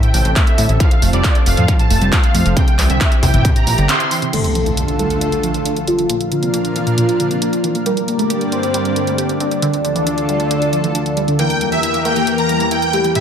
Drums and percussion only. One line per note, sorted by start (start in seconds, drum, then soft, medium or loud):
0.03 closed hi-hat soft
0.03 mid tom medium
0.14 open hi-hat loud
0.25 closed hi-hat soft
0.36 kick loud
0.36 clap loud
0.36 closed hi-hat medium
0.47 closed hi-hat medium
0.58 open hi-hat loud
0.69 closed hi-hat soft
0.80 kick loud
0.80 closed hi-hat loud
0.91 closed hi-hat medium
1.02 open hi-hat loud
1.13 closed hi-hat medium
1.24 kick loud
1.24 clap loud
1.24 closed hi-hat medium
1.35 closed hi-hat medium
1.46 open hi-hat loud
1.57 closed hi-hat medium
1.57 mid tom medium
1.68 kick loud
1.68 closed hi-hat medium
1.79 closed hi-hat medium
1.79 mid tom medium
1.90 open hi-hat loud
2.02 closed hi-hat medium
2.12 kick loud
2.12 clap loud
2.12 closed hi-hat medium
2.24 closed hi-hat medium
2.35 open hi-hat loud
2.46 closed hi-hat medium
2.57 kick loud
2.57 closed hi-hat loud
2.68 closed hi-hat medium
2.79 clap medium
2.79 open hi-hat loud
2.90 closed hi-hat medium
3.01 kick loud
3.01 clap loud
3.01 closed hi-hat medium
3.12 closed hi-hat medium
3.23 kick medium
3.23 open hi-hat loud
3.34 closed hi-hat medium
3.34 mid tom medium
3.45 kick loud
3.45 closed hi-hat loud
3.45 mid tom medium
3.56 closed hi-hat medium
3.56 mid tom medium
3.67 open hi-hat loud
3.78 closed hi-hat medium
3.89 clap loud
3.89 closed hi-hat medium
4.00 closed hi-hat medium
4.11 open hi-hat loud
4.22 closed hi-hat medium
4.33 closed hi-hat medium
4.33 crash medium
4.44 closed hi-hat soft
4.55 closed hi-hat medium
4.66 closed hi-hat soft
4.77 closed hi-hat medium
4.88 closed hi-hat soft
4.99 closed hi-hat medium
5.10 closed hi-hat soft
5.21 closed hi-hat medium
5.32 closed hi-hat soft
5.43 closed hi-hat medium
5.54 closed hi-hat soft
5.66 closed hi-hat medium
5.76 closed hi-hat soft
5.88 closed hi-hat medium
5.99 closed hi-hat soft
6.10 closed hi-hat medium
6.21 closed hi-hat soft
6.32 closed hi-hat medium
6.43 closed hi-hat soft
6.54 closed hi-hat medium
6.65 closed hi-hat soft
6.76 closed hi-hat medium
6.87 closed hi-hat soft
6.98 closed hi-hat medium
7.09 closed hi-hat soft
7.20 closed hi-hat medium
7.31 closed hi-hat soft
7.42 closed hi-hat medium
7.53 closed hi-hat soft
7.64 closed hi-hat medium
7.75 closed hi-hat soft
7.86 closed hi-hat medium
7.97 closed hi-hat soft
8.08 closed hi-hat medium
8.19 closed hi-hat soft
8.30 closed hi-hat medium
8.41 closed hi-hat soft
8.52 closed hi-hat medium
8.63 closed hi-hat soft
8.74 closed hi-hat medium
8.85 closed hi-hat soft
8.96 closed hi-hat medium
9.07 closed hi-hat soft
9.18 closed hi-hat medium
9.29 closed hi-hat soft
9.40 closed hi-hat medium
9.51 closed hi-hat soft
9.62 closed hi-hat medium
9.74 closed hi-hat soft
9.85 closed hi-hat medium
9.96 closed hi-hat soft
10.07 closed hi-hat medium
10.18 closed hi-hat soft
10.29 closed hi-hat medium
10.40 closed hi-hat soft
10.51 closed hi-hat medium
10.62 closed hi-hat soft
10.73 closed hi-hat medium
10.84 closed hi-hat soft
10.95 closed hi-hat medium
11.06 closed hi-hat soft
11.17 closed hi-hat medium
11.28 closed hi-hat soft
11.39 closed hi-hat medium
11.50 closed hi-hat soft
11.61 closed hi-hat medium
11.72 closed hi-hat soft
11.83 closed hi-hat medium
11.94 closed hi-hat soft
12.05 closed hi-hat medium
12.16 closed hi-hat soft
12.27 closed hi-hat medium
12.38 closed hi-hat soft
12.49 closed hi-hat medium
12.60 closed hi-hat soft
12.71 closed hi-hat medium
12.82 closed hi-hat soft
12.93 closed hi-hat medium
13.04 closed hi-hat soft
13.15 closed hi-hat medium